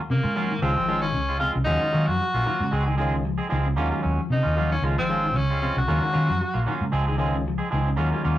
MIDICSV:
0, 0, Header, 1, 8, 480
1, 0, Start_track
1, 0, Tempo, 526316
1, 1523, Time_signature, 4, 2, 24, 8
1, 7646, End_track
2, 0, Start_track
2, 0, Title_t, "Tenor saxophone"
2, 0, Program_c, 0, 66
2, 100, Note_on_c, 0, 58, 77
2, 539, Note_off_c, 0, 58, 0
2, 568, Note_on_c, 0, 60, 92
2, 912, Note_off_c, 0, 60, 0
2, 925, Note_on_c, 0, 61, 89
2, 1253, Note_off_c, 0, 61, 0
2, 1275, Note_on_c, 0, 65, 84
2, 1385, Note_off_c, 0, 65, 0
2, 1500, Note_on_c, 0, 63, 96
2, 1892, Note_on_c, 0, 66, 91
2, 1905, Note_off_c, 0, 63, 0
2, 2612, Note_off_c, 0, 66, 0
2, 3942, Note_on_c, 0, 63, 82
2, 4278, Note_off_c, 0, 63, 0
2, 4307, Note_on_c, 0, 61, 77
2, 4412, Note_off_c, 0, 61, 0
2, 4546, Note_on_c, 0, 60, 84
2, 4896, Note_on_c, 0, 61, 88
2, 4910, Note_off_c, 0, 60, 0
2, 5261, Note_off_c, 0, 61, 0
2, 5274, Note_on_c, 0, 66, 102
2, 6188, Note_off_c, 0, 66, 0
2, 7646, End_track
3, 0, Start_track
3, 0, Title_t, "Tine electric piano"
3, 0, Program_c, 1, 4
3, 564, Note_on_c, 1, 51, 65
3, 569, Note_on_c, 1, 56, 66
3, 572, Note_on_c, 1, 65, 71
3, 573, Note_on_c, 1, 61, 64
3, 659, Note_off_c, 1, 51, 0
3, 662, Note_off_c, 1, 56, 0
3, 663, Note_off_c, 1, 65, 0
3, 664, Note_off_c, 1, 61, 0
3, 798, Note_on_c, 1, 51, 71
3, 802, Note_on_c, 1, 56, 64
3, 808, Note_on_c, 1, 61, 62
3, 813, Note_on_c, 1, 65, 73
3, 1061, Note_off_c, 1, 51, 0
3, 1063, Note_off_c, 1, 56, 0
3, 1066, Note_off_c, 1, 61, 0
3, 1068, Note_off_c, 1, 65, 0
3, 1513, Note_on_c, 1, 51, 72
3, 1515, Note_on_c, 1, 61, 63
3, 1516, Note_on_c, 1, 56, 66
3, 1521, Note_on_c, 1, 66, 78
3, 1872, Note_off_c, 1, 51, 0
3, 1873, Note_off_c, 1, 61, 0
3, 1874, Note_off_c, 1, 56, 0
3, 1876, Note_off_c, 1, 66, 0
3, 2728, Note_on_c, 1, 56, 76
3, 2731, Note_on_c, 1, 51, 89
3, 2733, Note_on_c, 1, 61, 78
3, 2737, Note_on_c, 1, 65, 94
3, 2942, Note_off_c, 1, 56, 0
3, 2943, Note_off_c, 1, 51, 0
3, 2944, Note_off_c, 1, 61, 0
3, 2946, Note_off_c, 1, 65, 0
3, 3337, Note_on_c, 1, 61, 82
3, 3352, Note_on_c, 1, 65, 91
3, 3373, Note_off_c, 1, 61, 0
3, 3381, Note_off_c, 1, 65, 0
3, 3456, Note_on_c, 1, 51, 77
3, 3458, Note_on_c, 1, 61, 68
3, 3460, Note_on_c, 1, 56, 71
3, 3463, Note_on_c, 1, 65, 80
3, 3803, Note_off_c, 1, 51, 0
3, 3804, Note_off_c, 1, 61, 0
3, 3805, Note_off_c, 1, 56, 0
3, 3806, Note_off_c, 1, 65, 0
3, 4401, Note_on_c, 1, 61, 62
3, 4404, Note_on_c, 1, 51, 72
3, 4406, Note_on_c, 1, 56, 61
3, 4417, Note_on_c, 1, 65, 74
3, 4495, Note_off_c, 1, 61, 0
3, 4497, Note_off_c, 1, 51, 0
3, 4498, Note_off_c, 1, 56, 0
3, 4503, Note_off_c, 1, 65, 0
3, 4640, Note_on_c, 1, 51, 67
3, 4641, Note_on_c, 1, 61, 62
3, 4646, Note_on_c, 1, 56, 62
3, 4650, Note_on_c, 1, 65, 78
3, 4900, Note_off_c, 1, 51, 0
3, 4901, Note_off_c, 1, 61, 0
3, 4904, Note_off_c, 1, 56, 0
3, 4905, Note_off_c, 1, 65, 0
3, 5360, Note_on_c, 1, 56, 61
3, 5362, Note_on_c, 1, 61, 66
3, 5365, Note_on_c, 1, 51, 70
3, 5370, Note_on_c, 1, 66, 76
3, 5716, Note_off_c, 1, 56, 0
3, 5717, Note_off_c, 1, 61, 0
3, 5718, Note_off_c, 1, 51, 0
3, 5721, Note_off_c, 1, 66, 0
3, 6550, Note_on_c, 1, 51, 86
3, 6550, Note_on_c, 1, 61, 77
3, 6555, Note_on_c, 1, 56, 78
3, 6560, Note_on_c, 1, 65, 93
3, 6775, Note_off_c, 1, 51, 0
3, 6775, Note_off_c, 1, 61, 0
3, 6777, Note_off_c, 1, 56, 0
3, 6780, Note_off_c, 1, 65, 0
3, 7163, Note_on_c, 1, 61, 77
3, 7178, Note_on_c, 1, 63, 85
3, 7209, Note_off_c, 1, 61, 0
3, 7216, Note_off_c, 1, 63, 0
3, 7289, Note_on_c, 1, 51, 73
3, 7290, Note_on_c, 1, 56, 71
3, 7294, Note_on_c, 1, 61, 66
3, 7299, Note_on_c, 1, 65, 78
3, 7643, Note_off_c, 1, 51, 0
3, 7644, Note_off_c, 1, 56, 0
3, 7646, Note_off_c, 1, 61, 0
3, 7646, Note_off_c, 1, 65, 0
3, 7646, End_track
4, 0, Start_track
4, 0, Title_t, "Clean electric guitar"
4, 0, Program_c, 2, 27
4, 212, Note_on_c, 2, 65, 49
4, 219, Note_on_c, 2, 61, 45
4, 223, Note_on_c, 2, 58, 39
4, 316, Note_off_c, 2, 58, 0
4, 319, Note_off_c, 2, 61, 0
4, 323, Note_off_c, 2, 65, 0
4, 325, Note_on_c, 2, 54, 53
4, 327, Note_on_c, 2, 58, 59
4, 330, Note_on_c, 2, 61, 60
4, 337, Note_on_c, 2, 65, 62
4, 479, Note_off_c, 2, 54, 0
4, 480, Note_off_c, 2, 58, 0
4, 481, Note_off_c, 2, 61, 0
4, 485, Note_off_c, 2, 65, 0
4, 568, Note_on_c, 2, 53, 66
4, 569, Note_on_c, 2, 56, 68
4, 569, Note_on_c, 2, 60, 76
4, 571, Note_on_c, 2, 65, 71
4, 686, Note_off_c, 2, 65, 0
4, 693, Note_off_c, 2, 60, 0
4, 696, Note_off_c, 2, 56, 0
4, 697, Note_on_c, 2, 65, 48
4, 699, Note_off_c, 2, 53, 0
4, 704, Note_on_c, 2, 60, 45
4, 707, Note_on_c, 2, 56, 37
4, 794, Note_off_c, 2, 56, 0
4, 798, Note_off_c, 2, 60, 0
4, 798, Note_off_c, 2, 65, 0
4, 801, Note_on_c, 2, 53, 58
4, 805, Note_on_c, 2, 56, 59
4, 809, Note_on_c, 2, 60, 57
4, 809, Note_on_c, 2, 65, 61
4, 956, Note_off_c, 2, 53, 0
4, 958, Note_off_c, 2, 56, 0
4, 960, Note_off_c, 2, 60, 0
4, 960, Note_off_c, 2, 65, 0
4, 1175, Note_on_c, 2, 65, 49
4, 1178, Note_on_c, 2, 60, 44
4, 1180, Note_on_c, 2, 56, 43
4, 1264, Note_off_c, 2, 56, 0
4, 1265, Note_on_c, 2, 53, 55
4, 1267, Note_off_c, 2, 60, 0
4, 1273, Note_off_c, 2, 65, 0
4, 1275, Note_on_c, 2, 56, 54
4, 1278, Note_on_c, 2, 60, 60
4, 1284, Note_on_c, 2, 65, 60
4, 1428, Note_off_c, 2, 53, 0
4, 1433, Note_off_c, 2, 56, 0
4, 1434, Note_off_c, 2, 60, 0
4, 1437, Note_off_c, 2, 65, 0
4, 1511, Note_on_c, 2, 54, 67
4, 1515, Note_on_c, 2, 61, 69
4, 1516, Note_on_c, 2, 65, 70
4, 1638, Note_off_c, 2, 65, 0
4, 1649, Note_off_c, 2, 54, 0
4, 1649, Note_on_c, 2, 65, 52
4, 1651, Note_off_c, 2, 61, 0
4, 1757, Note_off_c, 2, 65, 0
4, 1757, Note_on_c, 2, 54, 59
4, 1762, Note_on_c, 2, 58, 53
4, 1766, Note_on_c, 2, 61, 59
4, 1768, Note_on_c, 2, 65, 62
4, 1913, Note_off_c, 2, 54, 0
4, 1916, Note_off_c, 2, 58, 0
4, 1918, Note_off_c, 2, 61, 0
4, 1919, Note_off_c, 2, 65, 0
4, 2134, Note_on_c, 2, 65, 52
4, 2143, Note_on_c, 2, 61, 42
4, 2145, Note_on_c, 2, 58, 42
4, 2232, Note_off_c, 2, 58, 0
4, 2237, Note_off_c, 2, 65, 0
4, 2241, Note_on_c, 2, 54, 53
4, 2243, Note_on_c, 2, 58, 60
4, 2246, Note_off_c, 2, 61, 0
4, 2248, Note_on_c, 2, 65, 66
4, 2395, Note_off_c, 2, 54, 0
4, 2396, Note_off_c, 2, 58, 0
4, 2398, Note_off_c, 2, 65, 0
4, 2478, Note_on_c, 2, 56, 75
4, 2484, Note_on_c, 2, 60, 81
4, 2486, Note_on_c, 2, 68, 83
4, 2595, Note_off_c, 2, 68, 0
4, 2603, Note_off_c, 2, 60, 0
4, 2606, Note_on_c, 2, 68, 60
4, 2611, Note_off_c, 2, 56, 0
4, 2614, Note_on_c, 2, 60, 54
4, 2621, Note_on_c, 2, 56, 47
4, 2701, Note_off_c, 2, 56, 0
4, 2706, Note_off_c, 2, 60, 0
4, 2709, Note_off_c, 2, 68, 0
4, 2711, Note_on_c, 2, 53, 58
4, 2712, Note_on_c, 2, 56, 69
4, 2717, Note_on_c, 2, 60, 62
4, 2720, Note_on_c, 2, 68, 79
4, 2869, Note_off_c, 2, 53, 0
4, 2870, Note_off_c, 2, 56, 0
4, 2872, Note_off_c, 2, 60, 0
4, 2874, Note_off_c, 2, 68, 0
4, 3080, Note_on_c, 2, 68, 62
4, 3085, Note_on_c, 2, 60, 48
4, 3087, Note_on_c, 2, 56, 45
4, 3178, Note_off_c, 2, 56, 0
4, 3182, Note_off_c, 2, 60, 0
4, 3183, Note_off_c, 2, 68, 0
4, 3185, Note_on_c, 2, 53, 64
4, 3189, Note_on_c, 2, 56, 65
4, 3193, Note_on_c, 2, 60, 61
4, 3194, Note_on_c, 2, 68, 74
4, 3346, Note_off_c, 2, 53, 0
4, 3348, Note_off_c, 2, 56, 0
4, 3350, Note_off_c, 2, 60, 0
4, 3351, Note_off_c, 2, 68, 0
4, 3432, Note_on_c, 2, 54, 79
4, 3436, Note_on_c, 2, 58, 78
4, 3441, Note_on_c, 2, 61, 80
4, 3444, Note_on_c, 2, 65, 77
4, 3551, Note_off_c, 2, 65, 0
4, 3557, Note_off_c, 2, 61, 0
4, 3561, Note_off_c, 2, 58, 0
4, 3562, Note_on_c, 2, 65, 54
4, 3568, Note_off_c, 2, 54, 0
4, 3568, Note_on_c, 2, 61, 47
4, 3572, Note_on_c, 2, 58, 47
4, 3662, Note_off_c, 2, 58, 0
4, 3665, Note_off_c, 2, 61, 0
4, 3666, Note_on_c, 2, 54, 56
4, 3667, Note_off_c, 2, 65, 0
4, 3676, Note_on_c, 2, 61, 68
4, 3826, Note_off_c, 2, 54, 0
4, 3831, Note_off_c, 2, 61, 0
4, 4038, Note_on_c, 2, 65, 53
4, 4044, Note_on_c, 2, 61, 49
4, 4049, Note_on_c, 2, 58, 43
4, 4153, Note_off_c, 2, 65, 0
4, 4156, Note_off_c, 2, 61, 0
4, 4158, Note_off_c, 2, 58, 0
4, 4164, Note_on_c, 2, 54, 58
4, 4168, Note_on_c, 2, 58, 59
4, 4172, Note_on_c, 2, 61, 54
4, 4176, Note_on_c, 2, 65, 65
4, 4315, Note_off_c, 2, 54, 0
4, 4317, Note_off_c, 2, 58, 0
4, 4320, Note_off_c, 2, 61, 0
4, 4321, Note_off_c, 2, 65, 0
4, 4410, Note_on_c, 2, 53, 66
4, 4412, Note_on_c, 2, 56, 66
4, 4416, Note_on_c, 2, 65, 71
4, 4531, Note_off_c, 2, 65, 0
4, 4537, Note_off_c, 2, 53, 0
4, 4538, Note_off_c, 2, 56, 0
4, 4542, Note_on_c, 2, 65, 52
4, 4551, Note_on_c, 2, 56, 45
4, 4644, Note_off_c, 2, 56, 0
4, 4645, Note_off_c, 2, 65, 0
4, 4651, Note_on_c, 2, 53, 56
4, 4655, Note_on_c, 2, 56, 58
4, 4660, Note_on_c, 2, 65, 59
4, 4799, Note_off_c, 2, 53, 0
4, 4801, Note_off_c, 2, 56, 0
4, 4804, Note_off_c, 2, 65, 0
4, 5018, Note_on_c, 2, 65, 50
4, 5024, Note_on_c, 2, 56, 41
4, 5024, Note_on_c, 2, 60, 44
4, 5115, Note_off_c, 2, 56, 0
4, 5119, Note_off_c, 2, 60, 0
4, 5119, Note_off_c, 2, 65, 0
4, 5123, Note_on_c, 2, 53, 57
4, 5126, Note_on_c, 2, 56, 53
4, 5130, Note_on_c, 2, 60, 64
4, 5130, Note_on_c, 2, 65, 65
4, 5276, Note_off_c, 2, 53, 0
4, 5277, Note_off_c, 2, 56, 0
4, 5279, Note_off_c, 2, 60, 0
4, 5279, Note_off_c, 2, 65, 0
4, 5361, Note_on_c, 2, 54, 73
4, 5362, Note_on_c, 2, 58, 65
4, 5364, Note_on_c, 2, 61, 66
4, 5365, Note_on_c, 2, 65, 80
4, 5482, Note_off_c, 2, 61, 0
4, 5490, Note_off_c, 2, 58, 0
4, 5493, Note_off_c, 2, 54, 0
4, 5493, Note_on_c, 2, 61, 46
4, 5495, Note_off_c, 2, 65, 0
4, 5501, Note_on_c, 2, 58, 41
4, 5582, Note_off_c, 2, 58, 0
4, 5585, Note_off_c, 2, 61, 0
4, 5588, Note_on_c, 2, 54, 55
4, 5593, Note_on_c, 2, 58, 60
4, 5596, Note_on_c, 2, 61, 55
4, 5598, Note_on_c, 2, 65, 62
4, 5749, Note_off_c, 2, 54, 0
4, 5751, Note_off_c, 2, 58, 0
4, 5753, Note_off_c, 2, 61, 0
4, 5753, Note_off_c, 2, 65, 0
4, 5962, Note_on_c, 2, 65, 54
4, 5967, Note_on_c, 2, 58, 46
4, 6069, Note_off_c, 2, 58, 0
4, 6076, Note_off_c, 2, 65, 0
4, 6077, Note_on_c, 2, 54, 56
4, 6080, Note_on_c, 2, 58, 66
4, 6081, Note_on_c, 2, 61, 68
4, 6087, Note_on_c, 2, 65, 69
4, 6233, Note_off_c, 2, 54, 0
4, 6235, Note_off_c, 2, 58, 0
4, 6236, Note_off_c, 2, 61, 0
4, 6238, Note_off_c, 2, 65, 0
4, 6310, Note_on_c, 2, 56, 83
4, 6313, Note_on_c, 2, 53, 71
4, 6316, Note_on_c, 2, 60, 86
4, 6318, Note_on_c, 2, 68, 79
4, 6438, Note_off_c, 2, 68, 0
4, 6442, Note_off_c, 2, 60, 0
4, 6444, Note_off_c, 2, 56, 0
4, 6449, Note_on_c, 2, 68, 59
4, 6450, Note_off_c, 2, 53, 0
4, 6453, Note_on_c, 2, 60, 52
4, 6455, Note_on_c, 2, 56, 48
4, 6540, Note_off_c, 2, 56, 0
4, 6542, Note_off_c, 2, 60, 0
4, 6545, Note_off_c, 2, 68, 0
4, 6546, Note_on_c, 2, 53, 67
4, 6551, Note_on_c, 2, 56, 65
4, 6553, Note_on_c, 2, 60, 62
4, 6556, Note_on_c, 2, 68, 68
4, 6708, Note_off_c, 2, 53, 0
4, 6711, Note_off_c, 2, 56, 0
4, 6712, Note_off_c, 2, 60, 0
4, 6714, Note_off_c, 2, 68, 0
4, 6914, Note_on_c, 2, 68, 55
4, 6919, Note_on_c, 2, 60, 52
4, 6929, Note_on_c, 2, 56, 43
4, 7019, Note_off_c, 2, 56, 0
4, 7026, Note_off_c, 2, 68, 0
4, 7027, Note_off_c, 2, 60, 0
4, 7027, Note_on_c, 2, 53, 58
4, 7030, Note_on_c, 2, 56, 63
4, 7037, Note_on_c, 2, 68, 67
4, 7038, Note_on_c, 2, 60, 65
4, 7190, Note_off_c, 2, 53, 0
4, 7191, Note_off_c, 2, 56, 0
4, 7195, Note_off_c, 2, 60, 0
4, 7195, Note_off_c, 2, 68, 0
4, 7263, Note_on_c, 2, 54, 70
4, 7266, Note_on_c, 2, 58, 70
4, 7269, Note_on_c, 2, 61, 86
4, 7275, Note_on_c, 2, 65, 87
4, 7395, Note_off_c, 2, 65, 0
4, 7398, Note_off_c, 2, 61, 0
4, 7403, Note_off_c, 2, 58, 0
4, 7406, Note_on_c, 2, 65, 51
4, 7407, Note_off_c, 2, 54, 0
4, 7409, Note_on_c, 2, 61, 52
4, 7414, Note_on_c, 2, 58, 44
4, 7506, Note_off_c, 2, 58, 0
4, 7509, Note_off_c, 2, 61, 0
4, 7510, Note_off_c, 2, 65, 0
4, 7511, Note_on_c, 2, 54, 58
4, 7517, Note_on_c, 2, 58, 67
4, 7520, Note_on_c, 2, 61, 63
4, 7521, Note_on_c, 2, 65, 67
4, 7646, Note_off_c, 2, 54, 0
4, 7646, Note_off_c, 2, 58, 0
4, 7646, Note_off_c, 2, 61, 0
4, 7646, Note_off_c, 2, 65, 0
4, 7646, End_track
5, 0, Start_track
5, 0, Title_t, "Clean electric guitar"
5, 0, Program_c, 3, 27
5, 90, Note_on_c, 3, 49, 74
5, 224, Note_off_c, 3, 49, 0
5, 329, Note_on_c, 3, 53, 71
5, 402, Note_off_c, 3, 53, 0
5, 462, Note_on_c, 3, 51, 64
5, 595, Note_off_c, 3, 51, 0
5, 705, Note_on_c, 3, 53, 65
5, 837, Note_off_c, 3, 53, 0
5, 940, Note_on_c, 3, 51, 63
5, 1000, Note_off_c, 3, 51, 0
5, 1044, Note_on_c, 3, 49, 72
5, 1179, Note_off_c, 3, 49, 0
5, 1283, Note_on_c, 3, 48, 65
5, 1358, Note_off_c, 3, 48, 0
5, 1420, Note_on_c, 3, 49, 67
5, 1554, Note_off_c, 3, 49, 0
5, 1663, Note_on_c, 3, 51, 62
5, 1795, Note_off_c, 3, 51, 0
5, 1908, Note_on_c, 3, 53, 64
5, 1965, Note_off_c, 3, 53, 0
5, 2019, Note_on_c, 3, 54, 75
5, 2149, Note_off_c, 3, 54, 0
5, 2249, Note_on_c, 3, 51, 72
5, 2321, Note_off_c, 3, 51, 0
5, 2389, Note_on_c, 3, 49, 62
5, 2520, Note_off_c, 3, 49, 0
5, 2621, Note_on_c, 3, 51, 72
5, 2754, Note_off_c, 3, 51, 0
5, 2867, Note_on_c, 3, 49, 64
5, 2924, Note_off_c, 3, 49, 0
5, 2966, Note_on_c, 3, 53, 71
5, 3099, Note_off_c, 3, 53, 0
5, 3211, Note_on_c, 3, 51, 66
5, 3282, Note_off_c, 3, 51, 0
5, 3341, Note_on_c, 3, 49, 66
5, 3399, Note_off_c, 3, 49, 0
5, 3578, Note_on_c, 3, 54, 69
5, 3711, Note_off_c, 3, 54, 0
5, 3823, Note_on_c, 3, 53, 63
5, 3880, Note_off_c, 3, 53, 0
5, 3928, Note_on_c, 3, 49, 74
5, 4061, Note_off_c, 3, 49, 0
5, 4166, Note_on_c, 3, 53, 78
5, 4239, Note_off_c, 3, 53, 0
5, 4301, Note_on_c, 3, 51, 63
5, 4434, Note_off_c, 3, 51, 0
5, 4535, Note_on_c, 3, 53, 74
5, 4669, Note_off_c, 3, 53, 0
5, 4783, Note_on_c, 3, 51, 71
5, 4841, Note_off_c, 3, 51, 0
5, 4880, Note_on_c, 3, 49, 75
5, 5016, Note_off_c, 3, 49, 0
5, 5130, Note_on_c, 3, 48, 65
5, 5202, Note_off_c, 3, 48, 0
5, 5266, Note_on_c, 3, 49, 70
5, 5398, Note_off_c, 3, 49, 0
5, 5492, Note_on_c, 3, 51, 71
5, 5627, Note_off_c, 3, 51, 0
5, 5735, Note_on_c, 3, 53, 65
5, 5796, Note_off_c, 3, 53, 0
5, 5848, Note_on_c, 3, 54, 75
5, 5982, Note_off_c, 3, 54, 0
5, 6091, Note_on_c, 3, 51, 72
5, 6163, Note_off_c, 3, 51, 0
5, 6221, Note_on_c, 3, 49, 59
5, 6355, Note_off_c, 3, 49, 0
5, 6470, Note_on_c, 3, 51, 65
5, 6602, Note_off_c, 3, 51, 0
5, 6707, Note_on_c, 3, 49, 70
5, 6764, Note_off_c, 3, 49, 0
5, 6820, Note_on_c, 3, 53, 73
5, 6951, Note_off_c, 3, 53, 0
5, 7063, Note_on_c, 3, 51, 69
5, 7132, Note_off_c, 3, 51, 0
5, 7196, Note_on_c, 3, 49, 67
5, 7252, Note_off_c, 3, 49, 0
5, 7431, Note_on_c, 3, 54, 68
5, 7563, Note_off_c, 3, 54, 0
5, 7646, End_track
6, 0, Start_track
6, 0, Title_t, "Fingered electric bass"
6, 0, Program_c, 4, 33
6, 94, Note_on_c, 4, 48, 94
6, 203, Note_off_c, 4, 48, 0
6, 218, Note_on_c, 4, 44, 82
6, 514, Note_off_c, 4, 44, 0
6, 567, Note_on_c, 4, 37, 94
6, 679, Note_off_c, 4, 37, 0
6, 708, Note_on_c, 4, 32, 74
6, 1056, Note_off_c, 4, 32, 0
6, 1056, Note_on_c, 4, 37, 85
6, 1367, Note_off_c, 4, 37, 0
6, 1419, Note_on_c, 4, 36, 76
6, 1509, Note_off_c, 4, 36, 0
6, 1526, Note_on_c, 4, 39, 102
6, 1637, Note_off_c, 4, 39, 0
6, 1771, Note_on_c, 4, 51, 83
6, 1879, Note_off_c, 4, 51, 0
6, 1898, Note_on_c, 4, 42, 74
6, 1988, Note_off_c, 4, 42, 0
6, 2136, Note_on_c, 4, 34, 76
6, 2227, Note_off_c, 4, 34, 0
6, 2374, Note_on_c, 4, 44, 82
6, 2466, Note_off_c, 4, 44, 0
6, 2480, Note_on_c, 4, 37, 94
6, 3092, Note_off_c, 4, 37, 0
6, 3212, Note_on_c, 4, 37, 90
6, 3452, Note_off_c, 4, 37, 0
6, 3452, Note_on_c, 4, 39, 96
6, 3559, Note_off_c, 4, 39, 0
6, 3690, Note_on_c, 4, 39, 84
6, 3798, Note_off_c, 4, 39, 0
6, 3923, Note_on_c, 4, 48, 93
6, 4034, Note_off_c, 4, 48, 0
6, 4061, Note_on_c, 4, 39, 76
6, 4353, Note_off_c, 4, 39, 0
6, 4397, Note_on_c, 4, 37, 99
6, 4511, Note_off_c, 4, 37, 0
6, 4543, Note_on_c, 4, 32, 77
6, 4887, Note_off_c, 4, 32, 0
6, 4887, Note_on_c, 4, 37, 86
6, 5201, Note_off_c, 4, 37, 0
6, 5259, Note_on_c, 4, 36, 77
6, 5348, Note_off_c, 4, 36, 0
6, 5364, Note_on_c, 4, 39, 101
6, 5475, Note_off_c, 4, 39, 0
6, 5611, Note_on_c, 4, 51, 84
6, 5719, Note_off_c, 4, 51, 0
6, 5743, Note_on_c, 4, 42, 75
6, 5831, Note_off_c, 4, 42, 0
6, 5970, Note_on_c, 4, 34, 79
6, 6064, Note_off_c, 4, 34, 0
6, 6210, Note_on_c, 4, 44, 78
6, 6304, Note_off_c, 4, 44, 0
6, 6314, Note_on_c, 4, 37, 89
6, 6932, Note_off_c, 4, 37, 0
6, 7047, Note_on_c, 4, 37, 87
6, 7287, Note_off_c, 4, 37, 0
6, 7287, Note_on_c, 4, 39, 92
6, 7399, Note_off_c, 4, 39, 0
6, 7526, Note_on_c, 4, 39, 82
6, 7639, Note_off_c, 4, 39, 0
6, 7646, End_track
7, 0, Start_track
7, 0, Title_t, "Muted clean electric guitar strokes"
7, 1513, Note_on_c, 9, 29, 69
7, 1604, Note_off_c, 9, 29, 0
7, 2475, Note_on_c, 9, 29, 76
7, 2566, Note_off_c, 9, 29, 0
7, 3673, Note_on_c, 9, 29, 63
7, 3764, Note_off_c, 9, 29, 0
7, 4412, Note_on_c, 9, 29, 80
7, 4503, Note_off_c, 9, 29, 0
7, 4547, Note_on_c, 9, 29, 47
7, 4638, Note_off_c, 9, 29, 0
7, 7646, End_track
8, 0, Start_track
8, 0, Title_t, "Muted fingered electric bass strokes"
8, 5506, Note_on_c, 9, 29, 35
8, 5597, Note_off_c, 9, 29, 0
8, 6079, Note_on_c, 9, 29, 34
8, 6170, Note_off_c, 9, 29, 0
8, 7646, End_track
0, 0, End_of_file